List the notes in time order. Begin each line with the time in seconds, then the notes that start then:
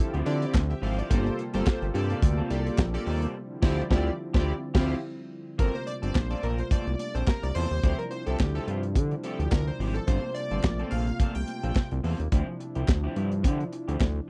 Already playing: D3 F3 G3 C4 E4 F4 G4 A4 E5
0.14 D2 F3 C4 E4 G4, closed hi-hat
0.25 D3 C4 E4 F4 G4 D5, muted clean electric guitar stroke, closed hi-hat
0.42 muted clean electric guitar stroke, closed hi-hat
0.54 D2, muted clean electric guitar stroke, kick, snare, clap
0.70 G4 E5, muted clean electric guitar stroke, closed hi-hat
0.82 G#1 F3 C4 E4 G4 A4 F5, open hi-hat
0.97 F3 C4 E4 F4 G4 D5, closed hi-hat
1.10 G1 C3 G3 A#3 C4 F4 G4 A4 C5, kick, closed hi-hat
1.26 muted clean electric guitar stroke, closed hi-hat
1.38 muted clean electric guitar stroke, closed hi-hat
1.54 G1 A#3 C4 F4 G4 A4 C5, closed hi-hat
1.66 muted clean electric guitar stroke, kick, snare, clap
1.82 G1, muted clean electric guitar stroke, closed hi-hat
1.94 G2 A#3 C4 F4 G4 A4 D5, closed hi-hat
2.10 A#3 C4 F4 A4, closed hi-hat
2.22 D2, muted clean electric guitar stroke, kick, closed hi-hat
2.37 A#3 C4 F4 A4
2.50 C2 A#3 F4 G4 A4 D5, muted clean electric guitar stroke, closed hi-hat
2.65 muted clean electric guitar stroke, closed hi-hat
2.78 A#1, muted clean electric guitar stroke, kick, snare, clap
2.94 A#3 F4 G4 A4 D5, muted clean electric guitar stroke, closed hi-hat
3.06 D#2 A#3 C4 F4 A4, open hi-hat
3.21 A#3 C4 F4 A4, closed hi-hat
3.35 D3 F3 C4 E4
3.62 D2 F3 C4 E4 F4 G4 D5, kick, snare, crash
3.90 D2 F3 C4 E4 F4 G4 D5, kick, snare
4.34 D2 F3 C4 E4 F4 G4 D5, kick, snare
4.74 D2 F3 C4 E4 F4 G4 F5, kick, snare, crash
5.58 G1 C3 G3 A3 A#3 C4 F4 A4 A#4, kick, closed hi-hat
5.74 C5, muted clean electric guitar stroke
5.86 D5, muted clean electric guitar stroke, closed hi-hat
6.02 G1 A#3 C4 F4 A4 D5, closed hi-hat
6.15 A#1 C5, muted clean electric guitar stroke, kick, snare, clap
6.30 A#3 C4 F4 A4 D5, closed hi-hat
6.43 A#1 A#3 C4 F4 A4 A#4, closed hi-hat
6.58 C5, muted clean electric guitar stroke, closed hi-hat
6.71 A#3 C4 F4 A4 D5, kick, closed hi-hat
6.87 C2, muted clean electric guitar stroke, closed hi-hat
6.99 D5, muted clean electric guitar stroke, closed hi-hat
7.15 A#1 A#3 C4 F4 A4 C5, closed hi-hat
7.27 A#4, kick, snare, clap
7.43 C2 D5, muted clean electric guitar stroke
7.55 E2 A#3 C4 F4 A4 C5, open hi-hat
7.71 D#2, muted clean electric guitar stroke, closed hi-hat
7.83 D2 F3 C4 D4 E4 G4, kick, closed hi-hat
7.98 A#4, muted clean electric guitar stroke, closed hi-hat
8.11 C5, muted clean electric guitar stroke, closed hi-hat
8.26 C2 F3 C4 E4 G4 A4, closed hi-hat
8.39 D2 G4, kick, snare, clap
8.55 F3 C4 E4 G4 A4, closed hi-hat
8.68 G2 F3 C4 E4 F4 G4, closed hi-hat
8.83 muted clean electric guitar stroke, closed hi-hat
8.95 D3, kick, closed hi-hat
9.11 muted clean electric guitar stroke, closed hi-hat
9.24 F3 C4 E4 G4 A4, closed hi-hat
9.39 D2 G4, muted clean electric guitar stroke, closed hi-hat
9.51 D2 A#4, kick, snare, clap
9.67 C5, muted clean electric guitar stroke
9.79 G#1 F3 C4 E4 G4, open hi-hat
9.94 A4, muted clean electric guitar stroke, closed hi-hat
10.07 G1 A3 A#3 C4 F4 A4 C5, kick, closed hi-hat
10.24 muted clean electric guitar stroke
10.34 D5, muted clean electric guitar stroke, closed hi-hat
10.51 G1 A#3 C4 F4 A4, closed hi-hat
10.64 A#1, muted clean electric guitar stroke, kick, snare, clap
10.79 A#3 C4 F4 A4, closed hi-hat
10.91 A#1 A#3 C4 F4 A4 F5, closed hi-hat
11.07 muted clean electric guitar stroke, closed hi-hat
11.19 A#3 C4 F4 A4, kick, closed hi-hat
11.35 C2 G5, muted clean electric guitar stroke, closed hi-hat
11.47 muted clean electric guitar stroke, closed hi-hat
11.63 A#1 A#3 C4 F4 A4, closed hi-hat
11.76 kick, snare, clap
11.91 C2, muted clean electric guitar stroke, closed hi-hat
12.04 E2 A#3 C4 F4 A4, open hi-hat
12.19 D#2, muted clean electric guitar stroke, closed hi-hat
12.32 D2 F3 C4 D4 E4 G4, kick, closed hi-hat
12.48 muted clean electric guitar stroke
12.60 muted clean electric guitar stroke, closed hi-hat
12.75 C2 F3 C4 E4 G4, closed hi-hat
12.88 D2, muted clean electric guitar stroke, kick, snare, clap
13.04 F3 C4 E4 G4
13.16 G2 F3 C4 E4 G4, closed hi-hat
13.31 muted clean electric guitar stroke, closed hi-hat
13.43 D3 F3 C4 E4 G4, kick, closed hi-hat
13.60 muted clean electric guitar stroke, closed hi-hat
13.72 muted clean electric guitar stroke, closed hi-hat
13.88 D2 F3 C4 E4 G4, closed hi-hat
14.00 D2, kick, snare, clap
14.16 muted clean electric guitar stroke